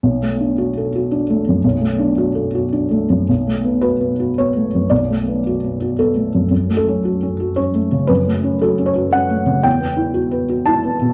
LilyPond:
<<
  \new Staff \with { instrumentName = "Felt piano" } { \time 3/4 \key b \minor \tempo 4 = 113 r2. | r2. | r4 b'4 cis''4 | d''2 a'4 |
r8 a'4. cis''4 | b'4 a'8 cis''8 fis''4 | g''2 a''4 | }
  \new Staff \with { instrumentName = "Felt piano" } { \time 3/4 \key b \minor \tuplet 3/2 { b,,8 a8 d'8 fis'8 a'8 fis'8 d'8 a8 fis,8 } | \tuplet 3/2 { b,,8 a8 d'8 fis'8 a'8 fis'8 d'8 a8 fis,8 } | \tuplet 3/2 { b,,8 a8 b8 fis'8 b8 fis'8 b8 a8 fis,8 } | \tuplet 3/2 { b,,8 a8 b8 fis'8 b8 fis'8 b8 a8 fis,8 } |
\tuplet 3/2 { fis,8 a8 cis'8 fis'8 cis'8 fis'8 cis'8 a8 cis8 } | \tuplet 3/2 { fis,8 a8 cis'8 fis'8 cis'8 fis'8 cis'8 a8 cis8 } | \tuplet 3/2 { e,8 b8 e'8 fis'8 b'8 fis'8 e'8 b8 b,8 } | }
>>